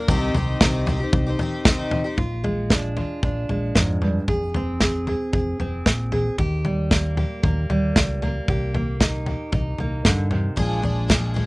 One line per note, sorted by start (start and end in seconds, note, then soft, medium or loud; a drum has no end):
0.08 0.30 C2 loud
0.08 0.35 C3 medium
0.08 0.33 D#3 medium
0.08 0.34 C4 medium
0.08 0.36 D#4 medium
0.08 0.36 G4 loud
0.08 kick loud
0.08 floor tom medium
0.34 0.56 C2 medium
0.34 0.61 D#3 medium
0.34 0.61 C4 medium
0.34 0.62 D#4 medium
0.34 0.62 G4 medium
0.34 floor tom medium
0.61 1.03 C2 medium
0.61 0.87 C3 medium
0.61 0.85 D#3 medium
0.61 0.86 C4 medium
0.61 0.87 D#4 medium
0.61 0.88 G4 medium
0.61 kick loud
0.61 snare loud
0.61 floor tom medium
0.86 1.00 D#3 medium
0.86 1.00 C4 medium
0.86 1.00 D#4 medium
0.86 0.99 G4 medium
0.86 floor tom medium
1.00 1.28 C4 soft
1.00 1.27 D#4 soft
1.00 1.25 G4 soft
1.13 1.34 C2 medium
1.13 kick loud
1.13 floor tom medium
1.26 1.39 C4 soft
1.26 1.40 D#4 soft
1.26 1.39 G4 medium
1.39 1.65 D#3 medium
1.39 1.66 C4 medium
1.39 1.66 D#4 medium
1.39 1.67 G4 medium
1.39 floor tom medium
1.65 2.05 C3 medium
1.65 2.05 D#3 medium
1.65 2.06 C4 medium
1.65 2.05 D#4 medium
1.65 2.03 G4 medium
1.65 kick loud
1.65 snare loud
1.65 floor tom medium
1.91 floor tom medium
2.04 2.19 C4 soft
2.04 2.18 D#4 medium
2.04 2.18 G4 medium
2.17 3.03 A#1 medium
2.17 2.65 A#2 medium
2.17 2.96 F4 medium
2.17 kick medium
2.17 floor tom medium
2.44 3.48 G#3 medium
2.44 floor tom medium
2.70 3.17 F3 medium
2.70 3.22 D4 soft
2.70 kick loud
2.70 snare medium
2.70 floor tom medium
2.96 4.25 F4 soft
2.96 floor tom medium
3.23 3.44 A#1 medium
3.23 3.70 F2 medium
3.23 4.25 D4 medium
3.23 kick medium
3.23 floor tom medium
3.49 3.70 A#1 medium
3.49 4.25 G#3 medium
3.49 floor tom medium
3.75 4.18 F2 medium
3.75 4.01 G#2 medium
3.75 kick medium
3.75 snare medium
3.75 floor tom medium
4.02 4.27 G2 medium
4.02 floor tom medium
4.28 5.14 F1 medium
4.28 4.75 F2 medium
4.28 4.81 G#4 medium
4.28 kick medium
4.28 floor tom medium
4.54 5.59 C4 medium
4.54 floor tom medium
4.80 5.28 F3 medium
4.80 5.07 G#4 medium
4.80 kick medium
4.80 snare medium
4.80 floor tom medium
5.07 5.32 G#4 soft
5.07 floor tom medium
5.33 5.55 F1 medium
5.33 5.80 C3 medium
5.33 6.11 G#4 medium
5.33 kick medium
5.33 floor tom medium
5.60 5.81 F1 medium
5.60 6.36 C4 medium
5.60 floor tom medium
5.86 6.28 A#1 medium
5.86 6.33 F3 medium
5.86 kick loud
5.86 snare loud
5.86 floor tom medium
6.12 6.36 G#4 medium
6.12 floor tom medium
6.38 7.24 D#2 medium
6.38 6.86 D#2 medium
6.38 7.17 G4 medium
6.38 kick medium
6.38 floor tom medium
6.65 7.69 G3 soft
6.65 floor tom medium
6.91 7.38 D#3 medium
6.91 7.43 A#3 medium
6.91 kick medium
6.91 snare medium
6.91 floor tom medium
7.17 8.45 G4 medium
7.17 floor tom medium
7.43 7.65 D#2 medium
7.43 7.90 A#2 medium
7.43 8.22 A#3 medium
7.43 kick medium
7.43 floor tom medium
7.70 7.91 D#2 medium
7.70 8.75 G3 medium
7.70 floor tom medium
7.96 8.38 C#2 medium
7.96 8.43 D#3 medium
7.96 kick loud
7.96 snare loud
7.96 floor tom medium
8.22 8.74 A#3 medium
8.22 floor tom medium
8.48 9.33 C2 medium
8.48 8.96 C3 medium
8.48 9.25 G4 medium
8.48 kick medium
8.48 floor tom medium
8.75 9.79 A#3 medium
8.75 floor tom medium
9.00 9.48 D#3 medium
9.00 9.52 D#4 medium
9.00 kick medium
9.00 snare loud
9.00 floor tom medium
9.26 10.54 G4 soft
9.26 floor tom medium
9.52 9.74 C2 medium
9.52 10.00 G2 medium
9.52 10.55 D#4 medium
9.52 kick loud
9.52 floor tom medium
9.78 10.00 C2 medium
9.78 10.55 A#3 medium
9.78 floor tom medium
10.05 10.48 G2 medium
10.05 10.32 D3 medium
10.05 kick medium
10.05 snare loud
10.05 floor tom medium
10.31 10.58 C3 medium
10.31 floor tom medium
10.56 11.42 A#1 medium
10.56 10.83 A#2 medium
10.56 10.81 F3 medium
10.56 10.82 G#3 medium
10.56 10.83 D4 medium
10.56 10.84 G#4 medium
10.56 kick medium
10.56 floor tom medium
10.82 11.07 F3 medium
10.82 11.08 G#3 medium
10.82 11.09 D4 medium
10.82 11.09 G#4 medium
10.82 floor tom medium
11.08 11.35 A#2 medium
11.08 11.33 F3 medium
11.08 11.34 G#3 medium
11.08 11.35 D4 medium
11.08 11.36 G#4 medium
11.08 kick loud
11.08 snare loud
11.08 floor tom medium
11.34 11.46 F3 medium
11.34 11.46 G#3 medium
11.34 11.46 D4 medium
11.34 11.46 G#4 medium
11.34 floor tom medium